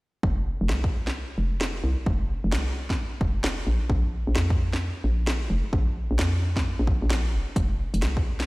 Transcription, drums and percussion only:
0.23 kick
0.69 snare
0.84 kick
1.07 snare
1.61 snare
2.06 kick
2.52 snare
2.90 kick, snare
3.21 kick
3.44 snare
3.90 kick
4.35 snare
4.50 kick
4.73 snare
5.27 snare
5.73 kick
6.19 snare
6.56 kick, snare
6.87 kick
7.10 snare
7.56 kick, closed hi-hat
7.94 closed hi-hat
8.02 snare, closed hi-hat
8.17 kick
8.40 snare, closed hi-hat

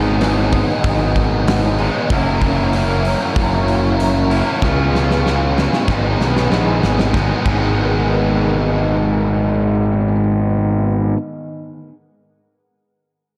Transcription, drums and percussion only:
0.21 snare, open hi-hat
0.52 kick, open hi-hat
0.84 kick, open hi-hat
1.16 kick, open hi-hat
1.48 snare, open hi-hat
1.79 open hi-hat
2.10 kick, open hi-hat
2.41 kick, open hi-hat
2.73 open hi-hat
3.05 open hi-hat
3.36 kick, open hi-hat
3.68 open hi-hat
4.00 open hi-hat
4.31 open hi-hat
4.62 kick, snare
4.95 snare
5.11 snare
5.27 snare
5.58 snare
5.73 snare
5.88 kick, snare
6.21 snare
6.37 snare
6.52 snare
6.83 snare
6.99 snare
7.14 kick, snare
7.46 kick, crash

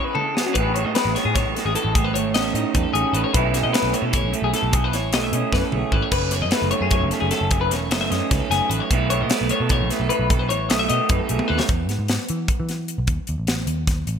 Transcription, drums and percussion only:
0.15 mid tom
0.37 snare
0.55 kick, closed hi-hat
0.76 closed hi-hat
0.95 snare, closed hi-hat
1.16 snare, closed hi-hat
1.36 kick, snare, closed hi-hat
1.56 snare, closed hi-hat
1.75 closed hi-hat
1.95 kick, closed hi-hat
2.15 closed hi-hat
2.34 snare, closed hi-hat
2.55 closed hi-hat
2.75 kick, closed hi-hat
2.95 closed hi-hat
3.15 closed hi-hat
3.34 kick, closed hi-hat
3.54 snare, closed hi-hat
3.74 snare, closed hi-hat
3.94 closed hi-hat
4.13 kick, closed hi-hat
4.34 closed hi-hat
4.54 snare, closed hi-hat
4.73 kick, closed hi-hat
4.93 snare, closed hi-hat
5.13 snare, closed hi-hat
5.33 closed hi-hat
5.53 kick, snare
5.72 mid tom
5.92 kick
6.12 kick, closed hi-hat, crash
6.31 snare, closed hi-hat
6.51 snare, closed hi-hat
6.71 closed hi-hat
6.91 kick, closed hi-hat
7.11 snare, closed hi-hat
7.31 snare, closed hi-hat
7.51 kick, closed hi-hat
7.71 snare, closed hi-hat
7.91 snare, closed hi-hat
8.12 snare, closed hi-hat
8.31 kick, snare, closed hi-hat
8.51 snare, closed hi-hat
8.71 closed hi-hat
8.91 kick, closed hi-hat
9.10 closed hi-hat
9.30 snare, closed hi-hat
9.49 closed hi-hat
9.69 kick, closed hi-hat
9.90 snare, closed hi-hat
10.10 closed hi-hat
10.30 kick, closed hi-hat
10.50 closed hi-hat
10.70 snare, closed hi-hat
10.89 closed hi-hat
11.09 kick, closed hi-hat
11.29 closed hi-hat
11.39 high tom
11.60 snare
11.69 kick, closed hi-hat
11.89 snare, closed hi-hat
12.08 snare, closed hi-hat
12.28 closed hi-hat
12.48 kick, closed hi-hat
12.69 snare, closed hi-hat
12.88 closed hi-hat
13.07 kick, closed hi-hat
13.27 closed hi-hat
13.47 snare, closed hi-hat
13.67 closed hi-hat
13.87 kick, snare, closed hi-hat
14.07 closed hi-hat

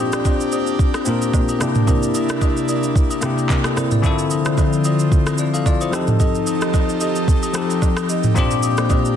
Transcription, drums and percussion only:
0.12 cross-stick, shaker
0.25 kick, high agogo, low woodblock, shaker
0.40 shaker
0.52 high agogo, shaker
0.67 shaker
0.79 kick, shaker
0.94 cross-stick, high agogo, shaker
1.06 shaker
1.21 high agogo, shaker
1.34 kick, low woodblock, shaker
1.49 high agogo, shaker
1.61 cross-stick, shaker
1.75 mid tom, shaker
1.87 kick, high agogo, shaker
2.03 shaker
2.15 high agogo, shaker
2.29 cross-stick, shaker
2.42 kick, high agogo, low woodblock, shaker
2.57 shaker
2.68 high agogo, shaker
2.83 shaker
2.96 kick, shaker
3.11 high agogo, shaker
3.22 cross-stick, shaker
3.37 high agogo, shaker
3.50 kick, clap, low woodblock, shaker
3.64 cross-stick, high agogo, shaker
3.77 cross-stick, shaker
3.91 mid tom, shaker
4.04 kick, high agogo, shaker
4.19 shaker
4.31 high agogo, shaker
4.45 cross-stick, shaker
4.58 kick, high agogo, low woodblock, shaker
4.73 shaker
4.84 high agogo, shaker
4.99 shaker
5.12 kick, shaker
5.27 cross-stick, high agogo, shaker
5.38 shaker
5.54 high agogo, shaker
5.66 kick, low woodblock, shaker
5.81 high agogo, shaker
5.93 cross-stick, shaker
6.07 mid tom, shaker
6.20 kick, high agogo, shaker
6.35 shaker
6.47 high agogo, shaker
6.61 cross-stick, shaker
6.74 kick, high agogo, low woodblock, shaker
6.89 shaker
7.01 high agogo, shaker
7.16 shaker
7.28 kick, shaker
7.43 high agogo, shaker
7.54 cross-stick, shaker
7.70 high agogo, shaker
7.82 kick, low woodblock, shaker
7.97 cross-stick, high agogo, shaker
8.09 shaker
8.23 mid tom, shaker
8.36 kick, high agogo, shaker
8.51 shaker
8.63 high agogo, shaker
8.77 cross-stick, shaker
8.90 kick, high agogo, low woodblock, shaker
9.05 shaker

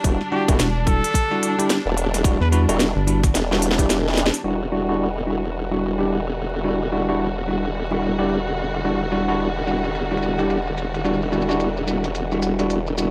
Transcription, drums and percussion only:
0.04 kick, closed hi-hat
0.21 snare
0.48 kick, closed hi-hat
0.60 snare, closed hi-hat
0.87 kick, closed hi-hat
1.04 closed hi-hat
1.14 kick, closed hi-hat
1.43 closed hi-hat
1.59 closed hi-hat
1.70 snare, closed hi-hat
1.97 closed hi-hat
2.14 snare, closed hi-hat
2.24 kick, closed hi-hat
2.42 snare
2.53 closed hi-hat
2.69 closed hi-hat
2.80 snare, closed hi-hat
3.08 closed hi-hat
3.23 kick, snare, closed hi-hat
3.35 snare, closed hi-hat
3.53 snare
3.62 closed hi-hat
3.71 snare
3.78 kick, closed hi-hat
3.90 snare, closed hi-hat
4.08 snare
4.14 snare
4.17 snare, closed hi-hat
4.26 snare
4.34 closed hi-hat
4.45 closed hi-hat, crash
4.99 closed hi-hat
5.27 shaker
5.44 closed hi-hat
5.55 closed hi-hat
5.83 closed hi-hat, shaker
5.99 closed hi-hat
6.10 closed hi-hat, shaker
6.38 closed hi-hat, shaker
6.54 closed hi-hat
6.65 closed hi-hat, shaker
6.93 closed hi-hat, shaker
7.09 closed hi-hat, shaker
7.20 closed hi-hat, shaker
7.37 shaker
7.48 closed hi-hat, shaker
7.64 closed hi-hat, shaker
7.75 closed hi-hat, shaker
7.92 shaker
8.02 closed hi-hat, shaker
8.19 closed hi-hat, shaker
8.26 closed hi-hat
8.30 closed hi-hat, shaker
8.35 closed hi-hat
8.46 shaker
8.57 closed hi-hat, shaker
8.74 closed hi-hat, shaker
8.85 closed hi-hat, shaker
9.02 shaker
9.13 closed hi-hat, shaker
9.29 closed hi-hat, shaker
9.40 closed hi-hat, shaker
9.49 shaker
9.57 shaker
9.62 shaker
9.67 closed hi-hat, shaker
9.84 closed hi-hat, shaker
9.95 closed hi-hat, shaker
10.12 shaker
10.17 closed hi-hat
10.22 shaker
10.39 closed hi-hat, shaker
10.50 closed hi-hat, shaker
10.67 shaker
10.78 closed hi-hat, shaker
10.94 closed hi-hat, shaker
11.00 shaker
11.05 closed hi-hat, shaker
11.14 shaker
11.22 shaker
11.33 closed hi-hat, shaker
11.42 shaker
11.49 closed hi-hat, shaker
11.51 shaker
11.60 closed hi-hat, shaker
11.77 shaker
11.88 closed hi-hat, shaker
12.04 closed hi-hat, shaker
12.15 closed hi-hat, shaker
12.32 shaker
12.42 closed hi-hat, shaker
12.59 closed hi-hat, shaker
12.70 closed hi-hat, shaker
12.87 shaker
12.98 closed hi-hat, shaker

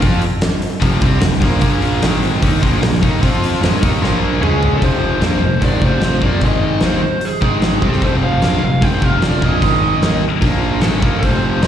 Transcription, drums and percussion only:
0.02 kick, open hi-hat
0.22 open hi-hat
0.41 snare, open hi-hat
0.62 open hi-hat
0.82 kick, open hi-hat
1.01 kick, open hi-hat
1.21 snare, open hi-hat
1.32 snare
1.42 kick, open hi-hat
1.61 kick, open hi-hat
1.82 open hi-hat
2.02 snare, open hi-hat
2.23 open hi-hat
2.43 kick, open hi-hat
2.63 kick, open hi-hat
2.83 snare, open hi-hat
2.93 snare
3.03 kick, open hi-hat
3.23 kick, open hi-hat
3.44 open hi-hat
3.54 snare
3.63 snare, open hi-hat
3.83 kick, open hi-hat
4.04 snare
4.43 mid tom
4.63 floor tom
4.82 kick, open hi-hat
5.21 snare, open hi-hat
5.62 kick, open hi-hat
5.82 kick
6.01 snare, open hi-hat
6.22 kick
6.41 kick, open hi-hat
6.80 snare, open hi-hat
7.21 open hi-hat
7.42 kick
7.62 snare, open hi-hat
7.82 kick
7.92 snare
8.02 kick, open hi-hat
8.42 snare, open hi-hat
8.82 kick, open hi-hat
9.02 kick
9.22 snare, open hi-hat
9.42 kick
9.62 kick, open hi-hat
10.02 snare, open hi-hat
10.42 kick, open hi-hat
10.81 snare, open hi-hat
11.02 kick
11.23 kick, open hi-hat
11.62 snare, open hi-hat

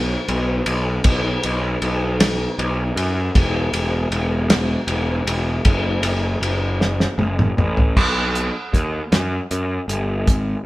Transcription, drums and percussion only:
0.28 ride
0.66 ride
1.04 kick, ride
1.43 ride
1.82 ride
2.20 snare, ride
2.59 ride
2.97 ride
3.35 kick, ride
3.73 ride
4.12 ride
4.50 snare, ride
4.88 ride
5.27 ride
5.65 kick, ride
6.03 ride
6.43 ride
6.81 snare
7.00 snare
7.19 high tom
7.39 mid tom
7.58 mid tom
7.77 floor tom
7.97 kick, crash
8.35 closed hi-hat
8.74 kick, closed hi-hat
9.12 snare, closed hi-hat
9.51 closed hi-hat
9.89 closed hi-hat
10.27 kick, closed hi-hat

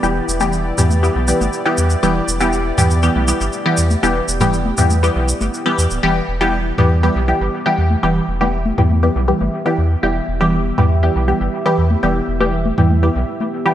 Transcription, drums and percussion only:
0.03 shaker
0.29 shaker
0.40 high conga, shaker
0.53 shaker
0.78 mid tom, shaker
0.90 high conga, shaker
1.04 shaker
1.28 shaker
1.41 high conga, shaker
1.53 shaker
1.78 shaker
1.90 shaker
2.03 shaker
2.28 shaker
2.40 shaker
2.53 shaker
2.78 mid tom, shaker
2.90 shaker
3.03 shaker
3.16 high conga
3.28 shaker
3.41 shaker
3.53 shaker
3.77 shaker
3.90 high conga, shaker
4.04 shaker
4.28 shaker
4.41 mid tom, high conga, shaker
4.53 shaker
4.66 high conga
4.78 mid tom, shaker
4.90 high conga, shaker
5.03 shaker
5.28 shaker
5.41 high conga, shaker
5.54 shaker
5.79 shaker
5.90 shaker
6.78 mid tom
7.91 high conga
8.41 high conga
8.66 high conga
8.78 mid tom
8.91 high conga
9.41 high conga
10.78 mid tom
11.91 high conga
12.40 high conga
12.66 high conga
12.78 mid tom
12.90 high conga
13.41 high conga

